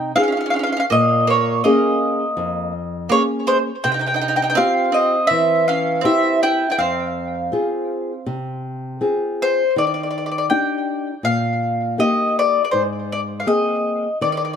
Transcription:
0.00 0.13 C3 medium
0.00 0.11 D#4 medium
0.00 0.11 G5 medium
0.15 0.19 C4 medium
0.15 0.75 D#4 soft
0.15 0.75 F4 soft
0.15 0.76 G#4 soft
0.15 0.22 F5 medium
0.20 0.27 C#4 soft
0.20 0.30 F5 medium
0.28 0.36 C#4 medium
0.32 0.39 F5 medium
0.37 0.45 C#4 soft
0.37 0.47 F5 medium
0.46 0.53 C#4 medium
0.50 0.58 C#4 medium
0.50 0.55 F5 medium
0.56 0.66 C#4 medium
0.56 0.62 F5 soft
0.63 0.74 C#4 soft
0.63 0.69 F5 medium
0.72 0.77 F5 medium
0.77 0.83 C#4 medium
0.77 0.85 F5 medium
0.90 1.62 A#2 medium
0.90 1.26 A#3 medium
0.90 1.27 D#5 medium
1.27 1.60 A#3 medium
1.27 1.62 C#5 medium
1.64 2.72 A#3 medium
1.64 2.23 A#3 soft
1.64 2.23 C#4 soft
1.64 2.23 G#4 medium
1.64 2.72 D#5 medium
2.37 3.08 F2 medium
3.09 3.20 A#3 medium
3.09 3.69 A#3 soft
3.09 3.70 C#4 soft
3.09 3.70 G#4 medium
3.09 3.22 C#5 loud
3.47 3.57 G#3 medium
3.47 3.57 C5 medium
3.84 4.56 C3 medium
3.84 3.91 C4 medium
3.84 3.90 G5 loud
3.92 3.98 D#4 medium
3.92 4.00 G5 medium
3.99 4.05 D#4 soft
3.99 4.06 G5 medium
4.06 4.13 D#4 soft
4.06 4.15 G5 medium
4.14 4.20 D#4 medium
4.14 4.21 G5 medium
4.21 4.27 D#4 medium
4.21 4.28 G5 medium
4.28 4.36 D#4 medium
4.28 4.35 G5 medium
4.36 4.41 D#4 medium
4.36 4.42 G5 medium
4.42 4.50 D#4 medium
4.42 4.48 G5 medium
4.50 4.57 D#4 soft
4.50 4.57 G5 medium
4.55 4.91 C4 medium
4.55 5.16 C4 medium
4.55 5.16 F4 soft
4.55 5.16 G4 medium
4.55 4.97 F5 medium
4.92 5.26 C4 medium
4.92 5.31 D#5 medium
5.27 6.02 E3 medium
5.27 5.65 C4 medium
5.27 5.64 E5 loud
5.68 6.01 C#4 medium
5.68 6.01 F5 medium
6.01 6.38 C4 medium
6.01 6.63 C4 medium
6.01 6.64 E4 soft
6.01 6.64 G4 medium
6.01 6.42 E5 loud
6.43 6.69 E4 medium
6.43 6.70 G5 medium
6.70 6.77 E4 medium
6.70 6.78 G5 medium
6.78 7.50 F2 medium
6.78 8.98 C4 medium
6.78 8.97 F5 medium
7.52 8.11 C4 soft
7.52 8.12 F4 soft
7.52 8.12 G#4 medium
8.26 8.99 C3 medium
9.01 9.61 C4 soft
9.01 9.61 F4 soft
9.01 9.61 G#4 medium
9.42 9.75 C5 loud
9.76 10.48 D#3 medium
9.76 9.85 D5 medium
9.87 9.93 D5 medium
9.94 10.01 D5 medium
10.03 10.09 D5 soft
10.11 10.17 D5 medium
10.18 10.24 D5 soft
10.26 10.30 D5 soft
10.31 10.37 D5 soft
10.38 10.45 D5 medium
10.50 11.10 D4 soft
10.50 11.10 D#4 soft
10.50 11.11 G4 medium
10.50 11.24 G5 medium
11.23 11.96 A#2 medium
11.23 11.95 F5 medium
11.98 12.58 A#3 soft
11.98 12.58 D#4 soft
11.98 12.58 G4 medium
11.98 12.36 D#5 medium
12.39 12.63 D5 medium
12.65 12.71 D5 medium
12.71 13.45 G#2 medium
12.71 12.82 C5 medium
13.12 13.20 D5 medium
13.40 13.47 F5 medium
13.46 14.06 A#3 soft
13.46 14.06 C4 soft
13.46 14.06 G#4 medium
13.46 14.17 D#5 medium
14.21 14.56 D#3 medium
14.21 14.29 D5 medium
14.32 14.36 D5 medium
14.37 14.43 D5 medium
14.45 14.52 D5 soft

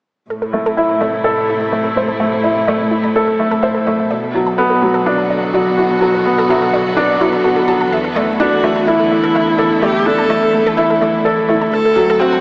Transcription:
0.30 4.08 A2 medium
0.30 4.11 C3 medium
0.30 0.35 A4 medium
0.42 4.77 E4 medium
0.42 0.45 A4 medium
0.48 4.10 A3 medium
0.53 0.67 A3 medium
0.53 0.59 A3 medium
0.66 0.74 A4 medium
0.77 1.00 E4 medium
0.77 0.85 E5 medium
0.84 12.41 A4 medium
0.89 0.94 A4 medium
1.01 1.24 A3 medium
1.01 1.06 D5 medium
1.24 1.38 A4 medium
1.24 1.33 D5 medium
1.49 1.54 E4 medium
1.61 1.66 A5 medium
1.72 1.95 A3 medium
1.72 1.78 A4 medium
1.84 1.88 A4 medium
1.96 2.02 A3 medium
1.96 2.10 C5 medium
2.08 2.16 A4 medium
2.20 2.43 A3 medium
2.20 2.28 E5 medium
2.32 2.37 A4 medium
2.44 2.67 E4 medium
2.44 2.49 D5 medium
2.68 2.91 A3 medium
2.68 2.75 D5 medium
2.91 2.97 E4 medium
3.03 3.09 A5 medium
3.15 3.21 A4 medium
3.15 3.29 A4 medium
3.27 3.31 A4 medium
3.39 3.44 A3 medium
3.39 3.62 A3 medium
3.51 3.59 A4 medium
3.63 3.86 C5 medium
3.63 3.71 E5 medium
3.75 3.80 A4 medium
3.87 4.01 A3 medium
3.87 3.92 D5 medium
4.10 7.89 B2 medium
4.10 12.41 D3 medium
4.10 4.18 D5 medium
4.34 4.48 F#3 medium
4.34 11.72 B3 medium
4.34 4.40 E4 medium
4.47 4.52 A5 medium
4.58 4.81 B3 medium
4.58 9.31 F#4 medium
4.58 4.63 A4 medium
4.70 4.73 A4 medium
4.82 5.05 F#3 medium
4.82 4.88 A3 medium
4.94 5.02 A4 loud
5.06 5.20 D4 medium
5.06 5.14 E5 medium
5.18 5.23 A4 medium
5.30 5.35 D5 medium
5.53 5.76 F#3 medium
5.53 5.62 D5 medium
5.77 5.83 E4 medium
5.77 5.91 F#4 medium
5.90 5.95 A5 medium
6.01 6.24 F#3 medium
6.01 6.07 A4 medium
6.15 6.17 A4 medium
6.25 6.31 A3 medium
6.25 6.48 B3 medium
6.38 6.45 A4 medium
6.49 6.72 F#3 medium
6.49 6.57 E5 medium
6.62 6.67 A4 medium
6.73 6.78 D5 medium
6.97 7.10 D4 medium
6.97 7.04 D5 medium
7.21 7.43 F#3 medium
7.21 7.26 E4 medium
7.33 7.38 A4 medium
7.44 7.67 F#4 medium
7.44 7.52 A4 medium
7.56 7.61 A4 medium
7.68 7.82 F#3 medium
7.68 7.73 A5 medium
7.81 7.85 A5 medium
7.92 11.70 E2 medium
7.92 8.00 E5 medium
8.04 12.41 E4 medium
8.04 8.09 A4 medium
8.16 8.29 A3 medium
8.16 8.21 D5 medium
8.39 8.62 D4 medium
8.39 8.88 F#4 medium
8.39 8.47 D5 medium
8.64 8.86 A3 medium
8.64 8.69 E4 medium
8.76 8.81 A5 medium
8.87 9.83 E4 medium
8.87 9.01 E4 medium
8.87 8.93 A4 medium
9.00 9.02 A4 medium
9.12 9.16 A3 medium
9.23 9.31 A4 medium
9.35 9.57 A3 medium
9.35 9.43 E5 medium
9.47 9.52 A4 medium
9.58 9.72 A4 medium
9.58 9.64 D5 medium
9.81 10.05 A3 medium
9.81 10.07 G4 medium
9.81 9.90 D5 medium
10.05 10.29 D4 medium
10.05 10.11 E4 medium
10.05 10.77 A4 medium
10.18 10.23 A5 medium
10.30 10.52 A3 medium
10.30 10.35 A4 medium
10.43 10.45 A4 medium
10.54 10.59 A3 medium
10.66 10.74 A4 medium
10.77 10.91 E4 medium
10.77 10.85 E5 medium
10.90 10.95 A4 medium
11.01 11.24 A3 medium
11.01 11.07 D5 medium
11.25 11.48 A4 medium
11.25 11.33 D5 medium
11.49 11.62 A3 medium
11.49 11.55 E4 medium
11.61 11.66 A5 medium
11.72 12.41 D2 medium
11.72 12.21 A4 loud
11.72 11.78 A4 medium
11.85 12.41 F#4 medium
11.85 11.88 A4 medium
11.90 12.41 C4 medium
11.96 12.10 F#3 medium
11.96 12.02 A3 medium
12.10 12.17 A4 medium
12.19 12.41 C4 medium
12.19 12.41 F#4 medium
12.19 12.29 E5 medium
12.33 12.38 A4 medium

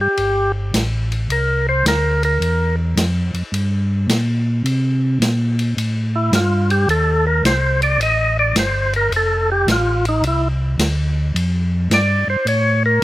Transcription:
0.01 0.52 G4 medium
0.17 0.71 G1 medium
0.17 ride medium
0.74 1.28 A1 medium
0.74 snare medium
0.74 hi-hat pedal medium
0.74 ride medium
1.12 ride soft
1.29 1.83 C2 medium
1.29 1.67 A#4 medium
1.29 ride medium
1.69 1.86 C5 medium
1.84 2.39 D2 medium
1.84 2.23 A#4 medium
1.84 snare medium
1.84 hi-hat pedal medium
1.84 ride medium
2.23 2.76 A#4 medium
2.23 ride soft
2.40 2.95 E2 medium
2.40 ride medium
2.96 3.31 F2 medium
2.96 snare medium
2.96 hi-hat pedal medium
2.96 ride medium
3.34 3.43 F2 soft
3.34 ride soft
3.52 4.07 G2 medium
3.52 ride medium
4.08 4.62 A#2 medium
4.08 snare medium
4.08 hi-hat pedal medium
4.08 ride medium
4.64 5.19 C3 medium
4.64 ride medium
5.20 5.75 A#2 medium
5.20 snare medium
5.20 hi-hat pedal medium
5.20 ride medium
5.59 ride soft
5.77 6.31 A2 medium
5.77 ride medium
6.16 6.33 E4 medium
6.32 6.86 G2 medium
6.32 6.70 F4 medium
6.32 snare medium
6.32 hi-hat pedal medium
6.32 ride medium
6.70 6.89 G4 medium
6.70 ride medium
6.87 7.42 D#2 medium
6.87 7.25 A4 medium
6.87 ride medium
7.27 7.44 A#4 medium
7.43 7.98 C2 medium
7.43 7.81 C5 medium
7.43 snare medium
7.43 hi-hat pedal medium
7.43 ride medium
7.82 8.00 D5 loud
7.82 ride medium
7.98 8.53 A1 medium
7.98 ride medium
8.03 8.37 D#5 loud
8.39 8.56 D5 loud
8.55 9.09 G1 medium
8.55 snare medium
8.55 hi-hat pedal medium
8.55 ride medium
8.59 8.93 C5 medium
8.93 9.13 A#4 loud
8.93 ride medium
9.11 9.65 F1 medium
9.11 ride medium
9.16 9.50 A4 medium
9.52 9.68 G4 loud
9.67 10.21 A1 medium
9.67 snare medium
9.67 hi-hat pedal medium
9.67 ride medium
9.72 10.05 F4 medium
10.05 10.25 D#4 medium
10.05 ride medium
10.22 10.76 C2 medium
10.22 ride medium
10.27 10.48 E4 medium
10.78 11.32 D2 medium
10.78 snare medium
10.78 hi-hat pedal medium
10.78 ride medium
11.34 11.88 F2 medium
11.34 ride medium
11.90 12.24 G2 medium
11.90 12.28 D5 medium
11.90 snare medium
11.90 hi-hat pedal medium
11.90 ride medium
12.27 12.37 G2 soft
12.27 12.47 C5 loud
12.45 13.00 A2 medium
12.45 12.83 C#5 loud
12.45 ride medium
12.86 13.02 A#4 medium

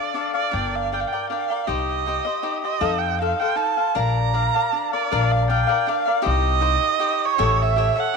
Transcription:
0.00 0.13 D4 soft
0.00 0.14 A4 soft
0.00 0.14 D5 soft
0.00 0.33 D5 medium
0.00 0.15 F5 medium
0.14 0.35 D4 medium
0.14 0.34 A4 soft
0.14 0.33 D5 medium
0.14 0.32 F5 medium
0.34 0.51 A4 soft
0.34 0.77 D5 medium
0.34 0.52 D5 soft
0.34 0.53 F5 soft
0.51 1.03 G1 medium
0.51 0.91 D4 medium
0.51 0.91 A#4 medium
0.51 0.91 D5 medium
0.51 0.92 G5 medium
0.75 0.95 F5 medium
0.92 1.12 D4 soft
0.92 1.12 A#4 soft
0.92 1.12 D5 soft
0.92 1.02 G5 medium
0.92 1.11 G5 soft
1.00 1.09 F5 medium
1.08 1.29 G5 medium
1.13 1.29 A#4 soft
1.13 1.29 D5 soft
1.13 1.30 G5 soft
1.30 1.50 D4 soft
1.30 1.50 A#4 soft
1.30 1.50 D5 soft
1.30 1.68 F5 medium
1.30 1.49 G5 medium
1.50 1.67 A#4 soft
1.50 1.68 D5 soft
1.50 1.68 G5 soft
1.67 2.17 C2 medium
1.67 2.05 D#4 medium
1.67 2.05 G4 medium
1.67 2.06 C5 medium
1.67 2.62 D#5 medium
1.67 2.06 D#5 medium
2.06 2.26 D#4 soft
2.06 2.26 G4 medium
2.06 2.25 C5 soft
2.06 2.24 D#5 medium
2.25 2.42 G4 soft
2.25 2.42 C5 medium
2.25 2.43 D#5 medium
2.43 2.63 D#4 soft
2.43 2.63 G4 medium
2.43 2.63 C5 medium
2.43 2.63 D#5 soft
2.62 2.81 G4 soft
2.62 2.81 C5 soft
2.62 3.00 D#5 medium
2.62 2.81 D#5 soft
2.81 3.31 F2 medium
2.81 3.19 D#4 medium
2.81 3.19 A4 medium
2.81 3.20 C5 medium
2.81 3.22 F5 medium
2.98 3.20 G5 medium
3.19 3.40 D#4 soft
3.19 3.40 A4 medium
3.19 3.40 C5 soft
3.19 3.41 F5 medium
3.19 3.39 F5 medium
3.40 3.56 A4 soft
3.40 3.55 C5 soft
3.40 3.56 F5 soft
3.40 3.58 G5 medium
3.55 3.77 D#4 soft
3.55 3.77 A4 soft
3.55 3.77 C5 medium
3.55 3.76 F5 medium
3.55 3.98 A5 medium
3.77 3.95 A4 soft
3.77 3.95 C5 soft
3.77 3.95 F5 soft
3.95 4.46 A#1 medium
3.95 4.33 D4 medium
3.95 4.32 A#4 medium
3.95 4.33 D5 medium
3.95 4.34 F5 medium
3.95 4.92 A#5 medium
4.34 4.54 D4 soft
4.34 4.54 A#4 soft
4.34 4.55 D5 soft
4.34 4.53 F5 medium
4.55 4.72 A#4 soft
4.55 4.72 D5 soft
4.55 4.72 F5 soft
4.72 4.93 D4 soft
4.72 4.92 A#4 soft
4.72 4.92 D5 medium
4.72 4.90 F5 soft
4.91 5.10 A#4 soft
4.91 5.33 D5 medium
4.91 5.11 D5 soft
4.91 5.10 F5 soft
5.12 5.62 A#1 medium
5.12 5.48 D4 medium
5.12 5.48 A#4 medium
5.12 5.49 D5 medium
5.12 5.49 F5 medium
5.32 5.49 F5 medium
5.50 5.69 D4 medium
5.50 5.68 A#4 medium
5.50 5.68 D5 medium
5.50 5.66 F5 medium
5.50 5.90 G5 medium
5.67 5.87 A#4 soft
5.67 5.87 D5 medium
5.67 5.86 F5 medium
5.87 6.07 D4 medium
5.87 6.07 A#4 medium
5.87 6.06 D5 medium
5.87 6.26 F5 medium
5.87 6.04 F5 medium
6.05 6.22 A#4 soft
6.05 6.23 D5 soft
6.05 6.23 F5 soft
6.22 6.59 D#4 medium
6.22 6.60 G4 medium
6.22 6.61 C5 medium
6.22 6.60 D#5 medium
6.26 6.75 C2 loud
6.26 7.26 D#5 loud
6.60 6.98 D#4 medium
6.60 6.98 G4 medium
6.60 7.00 C5 medium
6.60 7.00 D#5 medium
6.99 7.38 D#4 medium
6.99 7.37 G4 medium
6.99 7.38 C5 medium
6.99 7.38 D#5 medium
7.25 7.63 C#5 loud
7.38 7.89 A1 medium
7.38 7.75 G4 medium
7.38 7.76 A4 medium
7.38 7.77 C#5 medium
7.38 7.77 E5 loud
7.62 8.01 E5 medium
7.76 7.96 G4 medium
7.76 7.97 A4 soft
7.76 7.96 C#5 medium
7.76 7.95 E5 medium
7.96 8.14 A4 soft
7.96 8.15 C#5 medium
7.96 8.14 E5 soft
7.96 8.17 F#5 medium
8.14 8.17 G4 medium

